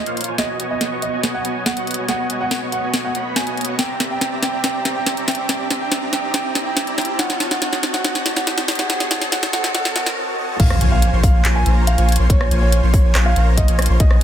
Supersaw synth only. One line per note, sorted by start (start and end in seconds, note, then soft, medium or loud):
0.06 0.25 A#3 medium
0.06 0.25 F4 medium
0.06 0.25 C5 medium
0.06 0.25 C#5 medium
0.06 0.25 F5 medium
0.28 0.36 A#3 medium
0.28 0.36 F4 medium
0.28 0.36 C5 medium
0.28 0.36 C#5 medium
0.28 0.36 G#5 loud
0.38 0.57 B3 medium
0.38 0.57 F#4 medium
0.38 0.57 C#5 medium
0.38 0.57 D#5 medium
0.38 0.57 G#5 medium
0.59 0.89 B3 medium
0.59 0.89 F#4 medium
0.59 0.89 C#5 medium
0.59 0.89 D#5 medium
0.59 0.89 G#5 medium
0.91 1.10 B3 medium
0.91 1.10 F#4 medium
0.91 1.10 C#5 medium
0.91 1.10 D#5 medium
0.91 1.10 C#6 medium
1.13 1.22 B3 medium
1.13 1.22 F#4 medium
1.13 1.22 C#5 medium
1.13 1.22 D#5 medium
1.13 1.22 G#5 medium
1.23 1.42 B3 medium
1.23 1.42 F#4 medium
1.23 1.42 C#5 medium
1.23 1.42 D#5 medium
1.23 1.42 G#5 loud
1.45 1.64 B3 loud
1.45 1.64 F#4 medium
1.45 1.64 C#5 medium
1.45 1.64 D#5 medium
1.45 1.64 G#5 loud
1.77 1.95 B3 medium
1.77 1.95 F#4 medium
1.77 1.95 C#5 medium
1.77 1.95 D#5 medium
1.77 1.95 F#5 medium
1.98 2.06 B3 medium
1.98 2.06 F#4 medium
1.98 2.06 C#5 medium
1.98 2.06 D#5 medium
1.98 2.06 G#5 medium
2.08 2.27 B3 medium
2.08 2.27 F#4 medium
2.08 2.27 C#5 medium
2.08 2.27 D#5 medium
2.08 2.27 G#5 medium
2.30 2.59 B3 medium
2.30 2.59 F#4 medium
2.30 2.59 C#5 medium
2.30 2.59 D#5 medium
2.30 2.59 G#5 medium
2.62 2.81 B3 medium
2.62 2.81 F#4 medium
2.62 2.80 C#5 medium
2.62 2.81 D#5 medium
2.62 2.81 C#6 medium
2.83 2.92 B3 medium
2.83 2.92 F#4 medium
2.83 2.92 C#5 medium
2.83 2.92 D#5 medium
2.83 2.92 G#5 medium
2.94 3.12 B3 medium
2.94 3.12 F#4 medium
2.94 3.12 C#5 medium
2.94 3.12 D#5 medium
2.94 3.12 G#5 loud
3.15 3.44 B3 medium
3.15 3.44 F#4 medium
3.15 3.44 C#5 medium
3.15 3.44 D#5 medium
3.15 3.44 B5 medium
3.47 3.66 B3 medium
3.47 3.66 F#4 medium
3.47 3.66 C#5 medium
3.47 3.66 D#5 medium
3.47 3.66 G#5 loud
3.68 3.76 B3 medium
3.68 3.76 F#4 medium
3.68 3.76 C#5 medium
3.68 3.76 D#5 medium
3.68 3.76 C#6 medium
3.79 3.97 C4 medium
3.79 3.97 G4 medium
3.79 3.97 D5 medium
3.79 3.97 E5 medium
3.79 3.97 A#5 medium
4.00 4.29 C4 medium
4.00 4.29 G4 medium
4.00 4.29 D5 medium
4.00 4.29 E5 medium
4.00 4.29 A#5 medium
4.32 4.51 C4 medium
4.32 4.51 G4 medium
4.32 4.51 D5 medium
4.32 4.51 E5 medium
4.32 4.51 A#5 medium
4.53 4.62 C4 medium
4.53 4.62 G4 medium
4.53 4.62 D5 medium
4.53 4.62 E5 medium
4.53 4.62 A#5 medium
4.64 4.83 C4 medium
4.64 4.83 G4 medium
4.64 4.83 D5 medium
4.64 4.83 E5 medium
4.64 4.83 A#5 medium
4.85 5.15 C4 medium
4.85 5.15 G4 medium
4.85 5.15 D5 medium
4.85 5.15 E5 medium
4.85 5.15 A#5 medium
5.17 5.36 C4 medium
5.17 5.36 G4 medium
5.17 5.36 D5 medium
5.17 5.36 E5 medium
5.17 5.36 A#5 medium
5.38 5.47 C4 medium
5.38 5.47 G4 medium
5.38 5.47 D5 medium
5.38 5.47 E5 medium
5.38 5.47 A#5 medium
5.49 5.68 C4 medium
5.49 5.68 G4 medium
5.49 5.68 D5 medium
5.49 5.68 E5 medium
5.49 5.68 A#5 medium
5.70 6.00 C4 medium
5.70 6.00 G4 medium
5.70 6.00 D5 medium
5.70 6.00 E5 medium
5.70 6.00 A#5 medium
6.02 6.21 C4 medium
6.02 6.21 G4 medium
6.02 6.21 D5 medium
6.02 6.21 E5 medium
6.02 6.21 A#5 medium
6.23 6.32 C4 medium
6.23 6.32 G4 medium
6.23 6.32 D5 medium
6.23 6.32 E5 medium
6.23 6.32 A#5 medium
6.34 6.53 C4 medium
6.34 6.53 G4 medium
6.34 6.53 D5 medium
6.34 6.53 E5 medium
6.34 6.53 A#5 medium
6.55 6.85 C4 medium
6.55 6.85 G4 medium
6.55 6.85 D5 medium
6.55 6.85 E5 medium
6.55 6.85 A#5 medium
6.87 7.06 C4 medium
6.87 7.06 G4 medium
6.87 7.06 D5 medium
6.87 7.06 E5 medium
6.87 7.06 A#5 medium
7.08 7.17 C4 medium
7.08 7.17 G4 medium
7.08 7.17 D5 medium
7.08 7.17 E5 medium
7.08 7.17 A#5 medium
7.19 7.38 C4 medium
7.19 7.38 F#4 medium
7.19 7.38 C#5 medium
7.19 7.38 D#5 medium
7.19 7.38 A5 medium
7.40 7.60 C4 medium
7.40 7.60 F#4 medium
7.40 7.60 C#5 medium
7.40 7.60 D#5 medium
7.40 7.60 A5 medium
7.62 7.80 C4 medium
7.62 7.80 F#4 medium
7.62 7.80 C#5 medium
7.62 7.80 D#5 medium
7.62 7.80 A5 medium
7.83 8.03 C4 medium
7.83 8.03 F#4 medium
7.83 8.03 C#5 medium
7.83 8.03 D#5 medium
7.83 8.03 A5 medium
8.04 8.23 C4 medium
8.04 8.23 F#4 medium
8.04 8.23 C#5 medium
8.04 8.23 D#5 medium
8.04 8.23 A5 medium
8.26 8.45 C4 medium
8.26 8.45 F#4 medium
8.26 8.45 C#5 medium
8.26 8.45 D#5 medium
8.26 8.45 A5 medium
8.47 8.66 C4 medium
8.47 8.66 F#4 medium
8.47 8.66 C#5 medium
8.47 8.66 D#5 medium
8.47 8.66 A5 medium
8.68 8.88 C4 medium
8.68 8.88 F#4 medium
8.68 8.88 C#5 medium
8.68 8.88 D#5 medium
8.68 8.88 A5 medium
8.89 9.08 C4 medium
8.89 9.08 F#4 medium
8.89 9.08 C#5 medium
8.89 9.08 D#5 medium
8.89 9.08 A5 medium
9.11 9.29 C4 medium
9.11 9.29 F#4 medium
9.11 9.29 C#5 medium
9.11 9.29 D#5 medium
9.11 9.29 A5 medium
9.32 9.51 C4 medium
9.32 9.51 F#4 medium
9.32 9.51 C#5 medium
9.32 9.51 D#5 medium
9.32 9.51 A5 medium
9.53 9.72 C4 medium
9.53 9.72 F#4 medium
9.53 9.72 C#5 medium
9.53 9.72 D#5 medium
9.53 9.72 A5 medium
9.74 9.93 C4 medium
9.74 9.93 F#4 medium
9.74 9.93 C#5 medium
9.74 9.93 D#5 medium
9.74 9.93 A5 medium
9.96 10.14 C4 medium
9.96 10.14 F#4 medium
9.96 10.14 C#5 medium
9.96 10.14 D#5 medium
9.96 10.14 A5 medium
10.17 10.36 C4 medium
10.17 10.36 F#4 medium
10.17 10.36 C#5 medium
10.17 10.36 D#5 medium
10.17 10.36 A5 medium
10.38 10.57 C4 medium
10.38 10.57 F#4 medium
10.38 10.57 C#5 medium
10.38 10.57 D#5 medium
10.38 10.57 A5 medium
10.60 10.78 A#3 medium
10.60 10.78 F4 medium
10.60 10.78 C5 medium
10.60 10.78 C#5 medium
10.60 10.78 G#5 medium
10.81 11.10 A#3 medium
10.81 11.10 F4 medium
10.81 11.10 C5 medium
10.81 11.10 C#5 medium
10.81 11.10 G#5 medium
11.13 11.32 A#3 medium
11.13 11.32 F4 medium
11.13 11.32 C5 medium
11.13 11.32 C#5 medium
11.13 11.32 C6 medium
11.34 11.43 A#3 medium
11.34 11.43 F4 medium
11.34 11.43 C5 medium
11.34 11.43 C#5 medium
11.34 11.43 G#5 medium
11.45 11.63 A#3 medium
11.45 11.63 F4 medium
11.45 11.63 C5 medium
11.45 11.63 C#5 medium
11.45 11.63 G#5 loud
11.66 11.95 A#3 medium
11.66 11.95 F4 medium
11.66 11.95 C5 medium
11.66 11.95 C#5 medium
11.66 11.95 A#5 medium
11.98 12.17 A#3 medium
11.98 12.17 F4 medium
11.98 12.17 C5 medium
11.98 12.17 C#5 medium
11.98 12.17 G#5 loud
12.19 12.27 A#3 medium
12.19 12.27 F4 medium
12.19 12.27 C5 medium
12.19 12.27 C#5 medium
12.19 12.27 C6 loud
12.29 12.48 A#3 medium
12.29 12.48 F4 medium
12.29 12.48 C5 medium
12.29 12.48 C#5 medium
12.29 12.48 G#5 medium
12.51 12.80 A#3 medium
12.51 12.80 F4 medium
12.51 12.80 C5 medium
12.51 12.80 C#5 medium
12.51 12.80 G#5 medium
12.83 13.02 A#3 medium
12.83 13.02 F4 medium
12.83 13.02 C5 medium
12.83 13.02 C#5 medium
12.83 13.02 C6 medium
13.04 13.13 A#3 medium
13.04 13.13 F4 medium
13.04 13.13 C5 medium
13.04 13.13 C#5 medium
13.04 13.13 G#5 loud
13.15 13.34 A#3 medium
13.15 13.34 F4 medium
13.15 13.34 C5 medium
13.15 13.34 C#5 medium
13.15 13.34 G#5 loud
13.36 13.66 A#3 medium
13.36 13.66 F4 medium
13.36 13.66 C5 medium
13.36 13.66 C#5 medium
13.36 13.66 A#5 medium
13.68 13.87 A#3 medium
13.68 13.87 F4 medium
13.68 13.87 C5 medium
13.68 13.87 C#5 medium
13.68 13.87 G#5 loud
13.89 13.97 A#3 medium
13.89 13.97 F4 medium
13.89 13.97 C5 medium
13.89 13.97 C#5 medium
13.89 13.97 C6 loud
14.00 14.19 B3 medium
14.00 14.19 F#4 medium
14.00 14.19 C#5 medium
14.00 14.19 D#5 medium
14.00 14.19 G#5 medium